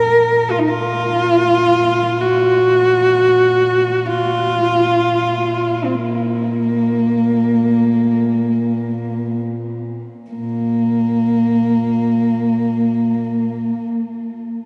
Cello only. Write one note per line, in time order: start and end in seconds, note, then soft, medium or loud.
0.00 0.52 A#4 medium
0.51 0.60 F4 medium
0.59 0.69 D#4 medium
0.68 2.22 F4 medium
2.20 4.07 F#4 medium
4.05 5.86 F4 medium
5.84 5.96 C4 soft
5.94 9.41 A#3 medium
10.31 13.86 A#3 medium